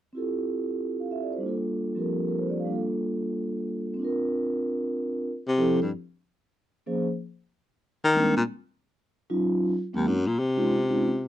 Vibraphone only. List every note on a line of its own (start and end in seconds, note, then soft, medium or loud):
0.13 1.42 C4 soft
0.13 1.43 E4 soft
0.13 1.43 F4 soft
0.17 1.44 G4 soft
0.17 1.45 A4 soft
1.00 1.17 F5 soft
1.11 1.30 E5 soft
1.22 1.38 D5 soft
1.33 1.49 C5 soft
1.38 2.63 G3 soft
1.38 2.66 D4 soft
1.43 2.69 A#3 soft
1.43 2.71 F4 soft
1.49 2.74 A4 soft
1.95 2.70 F3 soft
1.95 2.71 C4 soft
1.95 2.71 G4 soft
1.95 2.27 A#4 soft
2.28 2.45 A#4 soft
2.39 2.58 C5 soft
2.50 2.66 D5 soft
2.60 2.76 F5 soft
2.65 3.96 G3 soft
2.65 3.97 D4 soft
2.70 3.98 A#3 soft
2.70 4.00 F4 soft
2.75 4.01 A4 soft
3.94 3.97 C4 medium
3.94 5.26 C4 soft
3.99 5.27 D4 soft
3.99 5.28 F4 soft
4.04 5.29 A#4 medium
5.58 5.77 F3 medium
5.58 5.77 C4 medium
5.58 5.77 E4 medium
5.58 5.77 G4 medium
5.58 5.77 A4 medium
6.86 7.05 F3 soft
6.86 7.05 A#3 soft
6.86 7.05 C#4 soft
6.86 7.05 G#4 soft
6.86 7.05 C5 medium
8.14 8.32 G3 medium
8.14 8.32 G#3 medium
8.14 8.32 A#3 medium
8.14 8.33 C4 medium
8.14 8.32 D4 medium
9.30 9.71 F#3 medium
9.30 9.71 C#4 medium
9.30 9.71 D#4 medium
9.30 9.71 F4 medium
9.93 10.04 F#3 soft
9.93 10.04 G#3 medium
9.93 10.04 A#3 soft
9.93 10.04 C4 medium
9.93 10.04 D#4 medium
10.57 10.67 G#3 medium
10.57 10.68 C4 medium
10.57 10.67 C#4 medium
10.57 10.67 D#4 medium
10.57 10.68 F4 medium
10.89 11.00 G#3 medium
10.89 11.00 C4 medium
10.89 11.00 C#4 medium
10.89 11.00 D#4 medium
10.89 11.00 F4 medium